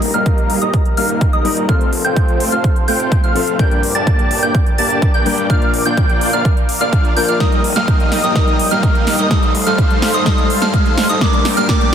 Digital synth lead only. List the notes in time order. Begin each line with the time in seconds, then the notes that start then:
0.14 F6
0.62 D#6
0.97 F6
1.33 D#6
1.69 F6
2.05 G6
2.52 F6
2.88 G6
3.24 F6
3.59 G6
3.95 A6
4.43 G6
4.78 A6
5.14 G6
5.50 F6
5.86 G6
6.33 F6
6.81 F6
7.17 G6
7.28 F6
7.40 D#6
7.76 F6
8.24 D#6
8.36 D#6
8.71 F6
9.19 D#6
9.31 D#6
9.66 F6
10.14 D#6
10.26 D#6
10.62 F6
11.09 D#6
11.21 D6
11.57 F6
11.69 D6